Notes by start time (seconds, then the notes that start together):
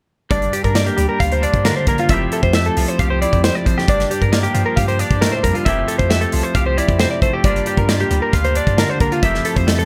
0.31 G1 G2 D4 D5, kick, closed hi-hat
0.42 closed hi-hat
0.53 G4, closed hi-hat
0.64 G2 A#4, kick, closed hi-hat
0.75 A#3 D5, snare, closed hi-hat
0.86 G4, closed hi-hat
0.97 D2 G3, closed hi-hat
1.09 A#4
1.20 D2 F4 F5, kick, closed hi-hat
1.32 C5, closed hi-hat
1.43 D4 D5, closed hi-hat
1.54 G2, kick, closed hi-hat
1.65 D3 A#4, snare, closed hi-hat
1.77 C5
1.87 A#1 A#3 A#4, kick, closed hi-hat
1.98 F4, closed hi-hat
2.09 F1 F2 F3 A3 E4 E5, kick, closed hi-hat
2.13 G4
2.32 A4, closed hi-hat
2.43 F2 C5, kick, closed hi-hat
2.53 A3 E5, snare, closed hi-hat
2.65 A4, closed hi-hat
2.77 C2 F3, open hi-hat
2.88 C5, closed hi-hat
2.99 C2 G4 F5, kick, closed hi-hat
3.10 C5
3.22 E4 D5, closed hi-hat
3.33 F2, kick, closed hi-hat
3.44 C5, snare, closed hi-hat
3.55 D5
3.65 A1 F2 C5, kick, closed hi-hat
3.78 G4, snare
3.88 G1 G2 D4 D5, kick, closed hi-hat
4.00 snare, closed hi-hat
4.11 G4, closed hi-hat
4.21 G2 A#4, kick, closed hi-hat
4.32 A#3 D5, snare, closed hi-hat
4.43 G4, closed hi-hat
4.54 G2 F3, closed hi-hat
4.66 A#4
4.76 G2 G4 F5, kick, closed hi-hat
4.88 C5, closed hi-hat
4.99 D4 D5, closed hi-hat
5.11 G2, kick, closed hi-hat
5.21 A2 A#4, snare, closed hi-hat
5.32 C5
5.43 F2 G2 A#4, kick, closed hi-hat
5.55 F4, closed hi-hat
5.65 F1 F2 F3 A3 E4 G4 E5, kick, closed hi-hat
5.88 A4, closed hi-hat
5.98 F2 C5, kick, closed hi-hat
6.10 A3 E5, snare, closed hi-hat
6.21 A4, closed hi-hat
6.32 C2 F3, open hi-hat
6.43 C5, closed hi-hat
6.55 C2 G4 F5, kick, closed hi-hat
6.66 C5
6.78 E4 D5, closed hi-hat
6.88 F2, kick, closed hi-hat
6.99 C3 C5, snare, closed hi-hat
7.11 D5
7.22 A1 A3 C5, kick, closed hi-hat
7.33 G4
7.44 G1 G2 G3 A#3 D4 F4 D5, kick, closed hi-hat
7.56 closed hi-hat
7.66 G4, closed hi-hat
7.77 G2 A#4, kick, closed hi-hat
7.89 A#3 D5, snare, closed hi-hat
8.00 G4, closed hi-hat
8.11 D2 G3, closed hi-hat
8.22 A#4
8.33 D2 F4 F5, kick, closed hi-hat
8.44 C5, closed hi-hat
8.55 D4 D5, closed hi-hat
8.67 G2, kick, closed hi-hat
8.77 D3 A#4, snare, closed hi-hat
8.90 C5
9.00 A#1 A#3 A#4, kick, closed hi-hat
9.12 F4, closed hi-hat
9.22 F1 F2 F3 A3 E4 G4 E5, kick, closed hi-hat
9.35 snare
9.45 A4, closed hi-hat
9.56 F2 C5, kick, closed hi-hat
9.67 A3 E5, snare, closed hi-hat
9.79 A4, closed hi-hat